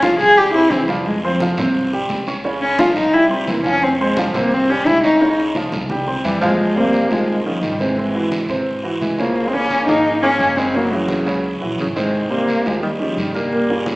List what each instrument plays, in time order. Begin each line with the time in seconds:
Already playing: upright bass C#2
0.02 upright piano F3 F4 F5, cello F4, high conga, short guiro
0.19 upright bass C2, cello G#4, high conga, short guiro
0.37 upright piano G3 G4 G5, cello G4, high conga, long guiro
0.54 upright piano C4 C5 C6, cello E4, high conga
0.71 upright bass F2, upright piano E3 E4 E5, cello C4, high conga, short guiro
0.88 upright piano F3 F4 F5, cello G3, high conga, short guiro
1.06 cello G#3, high conga, long guiro
1.24 cello F3, upright piano C4 C5 C6, high conga
1.40 upright piano F3 F4 F5, high conga, short guiro
1.57 upright bass C2, upright piano C3 C4 C5, low conga, short guiro
1.75 high conga, long guiro
1.93 upright piano G3 G4 G5, high conga
2.09 upright bass C#2, high conga, short guiro
2.27 upright piano C#4 C#5 C#6, short guiro
2.44 upright piano C#3 C#4 C#5, high conga, long guiro
2.61 cello C#4, high conga
2.79 upright piano F3 F4 F5, cello F4, high conga, short guiro
2.96 upright bass C2, cello D#4, high conga, short guiro
3.13 upright piano G3 G4 G5, cello E4, high conga, long guiro
3.30 cello G3, upright piano C4 C5 C6, high conga
3.47 upright bass F2, upright piano E3 E4 E5, cello A#3, high conga, short guiro
3.64 upright piano F3 F4 F5, cello C#4, high conga, short guiro
3.82 cello C4, high conga, long guiro
4.00 cello G#3, upright piano C4 C5 C6, high conga
4.16 upright piano F3 F4 F5, cello G3, high conga, short guiro
4.34 upright bass C2, upright piano C3 C4 C5, cello A#3, low conga, short guiro
4.52 cello C4, high conga, long guiro
4.69 upright piano G3 G4 G5, cello C#4, high conga
4.86 upright bass C#2, cello E4, high conga, short guiro
5.04 upright piano C#4 C#5 C#6, cello D#4, short guiro
5.21 upright piano C#3 C#4 C#5, high conga, long guiro
5.38 high conga
5.55 upright piano F3 F4 F5, high conga, short guiro
5.72 upright bass C2, high conga, short guiro
5.90 upright piano G3 G4 G5, high conga, long guiro
6.07 upright piano C4 C5 C6
6.24 upright bass F2, tenor saxophone E3, upright piano E3 E4 E5, cello G3, short guiro
6.41 tenor saxophone F3, upright piano F3 F4 F5, cello G#3, low conga, short guiro
6.58 high conga, long guiro
6.75 upright piano C3 C4 C5, tenor saxophone G3, cello A#3, high conga
6.93 high conga, short guiro
7.09 upright bass C2, upright piano D#3 D#4 F4, tenor saxophone F3, cello G#3, high conga, short guiro
7.27 high conga, long guiro
7.45 tenor saxophone C#3, upright piano D#3 D#4 F4, cello F3, high conga
7.61 upright bass G#1, tenor saxophone D#3, cello G3, high conga, short guiro
7.79 upright piano C3 C4 C5, tenor saxophone E3, cello G#3, high conga, short guiro
7.97 upright piano C3 C4 C5, high conga, long guiro
8.15 upright piano E3 E4 F#4
8.31 high conga, short guiro
8.49 upright bass G#2, upright piano C3 C4 C5, high conga, short guiro
8.66 high conga, long guiro
8.83 upright piano E3 E4 F#4, high conga
9.01 upright bass C#2, tenor saxophone E3, cello G#3, high conga, short guiro
9.19 upright piano C#3 C#4 C#5, tenor saxophone F3, cello A#3, short guiro
9.35 high conga, long guiro
9.46 tenor saxophone G#3, cello C4
9.53 upright piano C#3 C#4 C#5, tenor saxophone A#3, cello C#4, high conga
9.70 high conga, short guiro
9.87 upright bass G#1, upright piano F3 F4 G#4, tenor saxophone A#3, cello D#4, high conga, short guiro
10.05 high conga, long guiro
10.22 upright piano F3 F4 G#4, tenor saxophone A#3, cello C#4, high conga
10.39 upright bass F#1, high conga, short guiro
10.56 upright piano C#3 C#4 C#5, tenor saxophone G#3, cello C4, high conga, short guiro
10.74 upright piano C#3 C#4 C#5, tenor saxophone F#3, cello A#3, high conga, long guiro
10.91 tenor saxophone C#3, upright piano E3 E4 F#4, cello F#3, high conga
11.08 high conga, short guiro
11.26 upright bass C#2, upright piano C#3 C#4 C#5, high conga, short guiro
11.43 high conga, long guiro
11.60 upright bass A#1, upright piano E3 E4 F#4, high conga
11.78 upright bass G#1, tenor saxophone C#3, cello F#3, high conga, short guiro
11.95 upright piano C3 C4 C5, tenor saxophone D#3, cello G#3, short guiro
12.13 high conga, long guiro
12.30 upright piano C3 C4 C5, tenor saxophone G3, cello A#3, high conga
12.48 high conga, short guiro
12.65 upright bass D#2, upright piano D#3 D#4 G4, tenor saxophone F3, cello G#3, high conga, short guiro
12.83 tenor saxophone D#3, cello G3, high conga, long guiro
12.99 tenor saxophone C#3, upright piano D#3 D#4 G4, cello F3, high conga
13.17 upright bass G2, tenor saxophone D#3, cello G3, high conga, short guiro
13.34 upright piano A#2 A#3 A#4, tenor saxophone G3, cello A#3, high conga, short guiro
13.52 upright piano A#2 A#3 A#4, high conga, long guiro
13.70 upright piano C#3 C#4 F4, high conga
13.86 high conga, short guiro